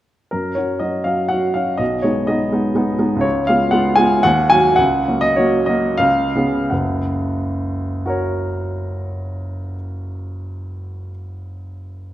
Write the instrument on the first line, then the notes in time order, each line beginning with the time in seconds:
grand piano
0.31 F#2 A#4
0.55 F#3 C#4 F#4 C#5
0.79 F#3 C#4 F#4 D#5
1.04 F#3 C#4 F#4 F5
1.29 F#3 C#4 F#4 F#5
1.54 F#3 C#4 F#4 F5
1.78 B1 D#5
2.02 G#3 B3 D#4 C#5
2.27 G#3 B3 D#4 D#5
2.52 G#3 B3 D#4
2.75 G#3 B3 D#4
2.99 G#3 B3 D#4
3.16 C#2
3.21 C#5
3.47 G#3 B3 F4 F5
3.71 G#3 B3 F4 F#5
3.96 G#3 B3 F4 G#5
4.23 D#2 F#5
4.50 F#3 A#3 F#4 G#5
4.76 C#2 F#5
5.08 F#3 A#3 F#4
5.21 D#5
5.36 F#3 A#3 F#4 C#5
5.66 F#3 A#3 F#4 D#5
5.98 C#2 F5
6.35 C#3 B3 G#4
6.70 F#1 C#2 F#5
8.06 F#4 A#4 C#5